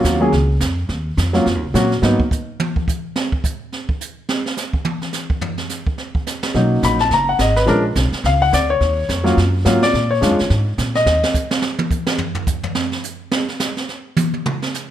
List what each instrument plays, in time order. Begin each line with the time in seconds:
Already playing: grand piano F#3 A#3 C#4
0.04 upright bass D#2, grand piano F4, kick, snare, hi-hat pedal
0.20 grand piano F#3 A#3 C#4 G#4
0.32 upright bass C#2, brush sweep, kick, snare
0.60 upright bass F2, kick, snare, hi-hat pedal
0.89 upright bass D#2, brush sweep, kick, snare
1.17 upright bass F2, kick, snare, hi-hat pedal
1.33 grand piano F#3 A#3 C#4 F4, snare
1.46 upright bass F#2, brush sweep, kick, snare
1.55 upright bass D#2
1.65 upright bass C#2
1.74 upright bass A#2, grand piano F#3 A#3 C#4 F#4, kick, snare, hi-hat pedal
1.92 snare
2.02 upright bass G#2, grand piano F#3 A#3 B3 D#4, snare
2.20 kick
2.31 kick, hi-hat pedal
2.60 high tom
2.76 kick
2.88 kick, hi-hat pedal
3.16 snare
3.32 kick
3.44 kick, hi-hat pedal
3.72 snare
3.89 kick
4.01 hi-hat pedal
4.29 snare
4.46 snare
4.57 snare, hi-hat pedal
4.73 kick
4.85 high tom
5.02 snare
5.13 snare, hi-hat pedal
5.30 kick
5.41 floor tom
5.58 snare
5.69 snare, hi-hat pedal
5.87 kick
5.98 snare
6.15 kick
6.27 snare, hi-hat pedal
6.43 snare
6.54 upright bass B1, grand piano F#3 A#3 C#4 D#4, brush sweep, kick, snare
6.83 upright bass A#1, grand piano B5, kick, snare, hi-hat pedal
6.99 grand piano A5, snare
7.11 upright bass F#1, grand piano A#5, brush sweep, kick, snare
7.29 grand piano F#5
7.39 upright bass G#1, grand piano D#5, kick, snare, hi-hat pedal
7.56 grand piano B4, snare
7.66 upright bass A#1, grand piano F3 G#3 C#4 D4 A#4, brush sweep, kick, snare
7.95 upright bass B1, kick, snare, hi-hat pedal
8.12 muted upright bass stroke, snare
8.24 upright bass C#2, grand piano F5, brush sweep, kick, snare
8.42 grand piano F#5
8.52 upright bass D2, grand piano D5, kick, snare, hi-hat pedal
8.70 grand piano C#5
8.81 upright bass D#2, brush sweep, kick, snare
9.09 upright bass F2, kick, snare, hi-hat pedal
9.24 grand piano F#3 A#3 C#4 F4, snare
9.37 upright bass F#2, brush sweep, kick, snare
9.65 upright bass G#2, grand piano F#3 A#3 C#4 F4, kick, snare, hi-hat pedal
9.82 grand piano D5, snare
9.94 upright bass A#2, brush sweep, kick, snare
10.11 grand piano C#5
10.21 upright bass F#2, grand piano G#3 C#4 D4 F4, kick, snare, hi-hat pedal
10.31 upright bass F2
10.39 upright bass D2, snare
10.50 upright bass G#2, brush sweep, kick, snare
10.78 upright bass A#2, kick, snare, hi-hat pedal
10.95 grand piano D#5, snare
11.06 upright bass D#2, snare
11.24 snare
11.34 kick, hi-hat pedal
11.51 snare
11.62 snare
11.79 high tom
11.91 kick, hi-hat pedal
12.07 snare
12.18 floor tom
12.35 floor tom
12.47 kick, hi-hat pedal
12.63 floor tom
12.75 snare
12.92 snare
13.04 hi-hat pedal
13.31 snare
13.48 snare
13.60 snare, hi-hat pedal
13.77 snare
13.89 snare
14.17 hi-hat pedal, high tom
14.34 high tom
14.46 mid tom
14.62 snare
14.74 snare, hi-hat pedal